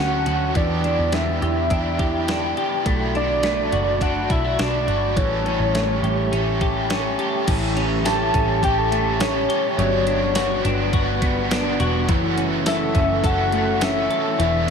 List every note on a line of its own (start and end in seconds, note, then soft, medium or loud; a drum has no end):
0.00 0.25 D2 medium
0.00 0.53 F#3 medium
0.00 0.55 A3 medium
0.00 0.61 A3 medium
0.00 0.56 C#4 medium
0.00 0.61 C#4 medium
0.00 0.25 F#4 medium
0.00 0.51 F#4 medium
0.00 0.56 F#4 medium
0.00 0.53 F#5 medium
0.00 0.58 F#5 loud
0.00 0.51 A5 medium
0.00 0.51 C#6 medium
0.26 0.54 D2 medium
0.26 0.61 F#4 medium
0.26 closed hi-hat soft
0.53 0.96 E2 medium
0.53 1.69 E3 medium
0.53 2.86 E3 medium
0.53 1.71 B3 medium
0.53 1.72 D4 medium
0.53 2.83 E4 medium
0.53 5.12 D5 medium
0.53 1.16 D5 medium
0.53 2.84 G5 medium
0.53 5.12 B5 medium
0.53 kick loud
0.53 closed hi-hat medium
0.59 1.71 G4 medium
0.84 1.70 D4 medium
0.84 closed hi-hat soft
0.99 1.40 E2 medium
1.12 2.86 B3 medium
1.12 2.58 E5 medium
1.12 snare medium
1.12 closed hi-hat medium
1.42 1.69 E2 medium
1.42 1.98 G4 medium
1.42 closed hi-hat soft
1.70 2.53 E2 loud
1.70 2.25 E3 medium
1.70 2.27 B3 medium
1.70 2.28 D4 medium
1.70 2.29 G4 medium
1.70 kick medium
1.70 closed hi-hat medium
1.99 2.56 G4 medium
1.99 kick medium
1.99 closed hi-hat soft
2.26 2.85 E3 medium
2.26 2.86 B3 medium
2.26 3.14 D4 medium
2.26 2.87 D4 medium
2.26 2.87 G4 medium
2.26 snare loud
2.26 closed hi-hat medium
2.57 2.92 G4 medium
2.57 closed hi-hat soft
2.84 3.68 B1 medium
2.84 4.00 B2 medium
2.84 3.98 F#3 medium
2.84 3.43 A3 medium
2.84 4.01 A3 medium
2.84 5.14 F#4 medium
2.84 7.43 A5 medium
2.84 kick loud
2.84 closed hi-hat medium
2.88 4.01 D4 medium
2.88 4.02 F#4 medium
3.15 4.00 D4 medium
3.15 4.04 D5 loud
3.15 closed hi-hat soft
3.43 5.74 A3 medium
3.43 snare medium
3.43 closed hi-hat medium
3.72 4.27 F#1 medium
3.72 4.30 F#4 medium
3.72 closed hi-hat soft
4.00 4.55 F#3 medium
4.00 4.58 A3 medium
4.00 4.58 D4 medium
4.00 4.59 F#4 medium
4.00 4.33 F#5 loud
4.00 kick medium
4.00 closed hi-hat medium
4.30 4.58 B1 medium
4.30 4.44 E4 medium
4.30 4.62 E5 medium
4.30 kick medium
4.30 closed hi-hat medium
4.44 4.86 F#4 soft
4.57 4.86 B1 medium
4.57 5.15 F#3 medium
4.57 5.17 A3 medium
4.57 5.22 D4 medium
4.57 5.17 D4 medium
4.57 5.17 F#4 medium
4.57 5.17 D5 loud
4.57 snare loud
4.57 closed hi-hat medium
4.87 5.17 G1 medium
4.87 5.22 F#4 medium
4.87 closed hi-hat soft
5.16 5.58 A1 medium
5.16 5.45 A2 medium
5.16 5.45 E3 medium
5.16 7.47 E3 medium
5.16 5.46 G3 medium
5.16 5.45 A3 medium
5.16 5.44 C#4 medium
5.16 7.45 G4 medium
5.16 5.43 A4 medium
5.16 6.86 C#5 loud
5.16 7.45 E5 medium
5.16 7.45 C#6 medium
5.16 kick loud
5.16 closed hi-hat medium
5.44 6.30 G3 soft
5.44 6.32 A3 soft
5.44 6.32 C#4 soft
5.44 6.34 A4 soft
5.44 closed hi-hat soft
5.60 6.01 A1 medium
5.74 8.08 A3 medium
5.74 snare loud
5.74 closed hi-hat medium
6.03 6.30 A1 medium
6.03 6.61 G4 medium
6.03 closed hi-hat soft
6.31 7.14 A1 medium
6.31 6.88 G3 medium
6.31 6.89 A3 medium
6.31 6.90 C#4 medium
6.31 6.91 A4 medium
6.31 closed hi-hat medium
6.61 7.18 G4 medium
6.61 kick medium
6.61 closed hi-hat soft
6.88 7.47 G3 medium
6.88 7.48 A3 medium
6.88 7.76 C#4 medium
6.88 7.48 C#4 medium
6.88 7.49 A4 medium
6.88 snare loud
6.88 closed hi-hat medium
7.19 7.79 G4 medium
7.19 closed hi-hat soft
7.47 8.30 A1 loud
7.47 8.05 A2 medium
7.47 9.78 E3 medium
7.47 8.05 E3 loud
7.47 8.04 G3 medium
7.47 8.04 A3 medium
7.47 8.05 C#4 loud
7.47 9.76 G4 medium
7.47 8.06 A4 medium
7.47 9.76 E5 medium
7.47 9.76 A5 medium
7.47 9.76 C#6 medium
7.47 kick loud
7.47 closed hi-hat medium
7.47 crash loud
7.76 8.33 C#4 medium
7.76 closed hi-hat soft
8.04 8.61 G3 medium
8.04 8.61 A3 medium
8.04 8.63 C#4 medium
8.04 8.62 G4 medium
8.04 8.64 A4 medium
8.04 8.66 A5 loud
8.04 snare loud
8.04 closed hi-hat medium
8.04 tambourine medium
8.34 8.61 A1 loud
8.34 9.20 C#4 medium
8.34 kick loud
8.34 closed hi-hat medium
8.62 9.45 A1 loud
8.62 9.19 G3 medium
8.62 9.20 A3 medium
8.62 9.21 C#4 medium
8.62 9.49 G4 medium
8.62 9.21 A4 medium
8.62 8.80 G5 loud
8.62 kick medium
8.62 closed hi-hat medium
8.78 9.23 A5 loud
8.91 9.84 A3 medium
8.91 closed hi-hat medium
9.19 9.76 G3 medium
9.19 9.78 A3 medium
9.19 9.84 C#4 medium
9.19 9.78 C#4 medium
9.19 9.79 A4 medium
9.19 9.79 C#5 medium
9.19 snare loud
9.19 closed hi-hat medium
9.19 tambourine medium
9.49 10.35 G4 medium
9.49 closed hi-hat medium
9.77 10.61 G1 loud
9.77 12.08 F#3 medium
9.77 10.34 G3 medium
9.77 10.35 B3 medium
9.77 10.36 D4 medium
9.77 10.38 F#4 medium
9.77 12.06 B4 medium
9.77 10.06 C#5 loud
9.77 14.35 F#5 medium
9.77 closed hi-hat medium
10.07 10.63 D4 medium
10.07 10.61 C#5 medium
10.07 closed hi-hat soft
10.35 10.91 G3 medium
10.35 10.92 B3 medium
10.35 10.93 D4 medium
10.35 10.93 F#4 medium
10.35 10.95 F#4 medium
10.35 snare loud
10.35 closed hi-hat medium
10.35 tambourine medium
10.64 10.92 G1 loud
10.64 11.50 D4 medium
10.64 closed hi-hat medium
10.92 11.76 G1 loud
10.92 11.48 G3 medium
10.92 11.50 B3 medium
10.92 11.51 D4 medium
10.92 11.79 F#4 medium
10.92 11.52 F#4 medium
10.92 kick medium
10.92 closed hi-hat medium
11.22 12.14 B3 medium
11.22 kick medium
11.22 closed hi-hat medium
11.50 12.08 G3 medium
11.50 12.09 B3 medium
11.50 12.15 D4 medium
11.50 12.09 D4 medium
11.50 12.11 F#4 medium
11.50 snare loud
11.50 closed hi-hat medium
11.50 tambourine medium
11.80 12.09 E1 medium
11.80 12.66 F#4 medium
11.80 closed hi-hat soft
12.06 12.91 F#1 loud
12.06 13.23 F#2 medium
12.06 13.24 C#3 medium
12.06 14.38 E3 medium
12.06 13.22 E3 medium
12.06 13.22 A3 loud
12.06 14.37 A4 medium
12.06 14.70 E5 medium
12.06 14.37 C#6 medium
12.06 kick loud
12.06 closed hi-hat medium
12.11 13.23 C#4 loud
12.11 13.24 F#4 loud
12.38 12.94 C#4 medium
12.38 closed hi-hat soft
12.66 13.23 A4 medium
12.66 13.28 E5 loud
12.66 snare loud
12.66 closed hi-hat medium
12.66 tambourine medium
12.95 13.23 F#1 loud
12.95 13.80 C#4 medium
12.95 kick loud
12.95 closed hi-hat medium
13.22 14.07 F#1 loud
13.22 13.80 E3 medium
13.22 13.81 A3 medium
13.22 13.82 C#4 medium
13.22 13.83 F#4 medium
13.22 14.09 A4 medium
13.22 13.85 F#5 loud
13.22 kick medium
13.22 closed hi-hat medium
13.52 14.45 A3 medium
13.52 closed hi-hat medium
13.80 14.37 E3 medium
13.80 14.39 A3 medium
13.80 14.45 C#4 medium
13.80 14.40 C#4 medium
13.80 14.40 F#4 medium
13.80 14.40 E5 loud
13.80 snare loud
13.80 closed hi-hat medium
13.80 tambourine medium
14.10 14.45 A4 medium
14.10 closed hi-hat medium
14.37 14.70 E1 loud
14.37 14.70 E3 medium
14.37 14.70 B3 medium
14.37 14.70 D4 medium
14.37 14.70 B4 medium
14.37 14.70 E5 loud
14.37 14.70 G#5 medium
14.37 14.70 D6 medium
14.37 closed hi-hat medium
14.42 14.70 G#4 medium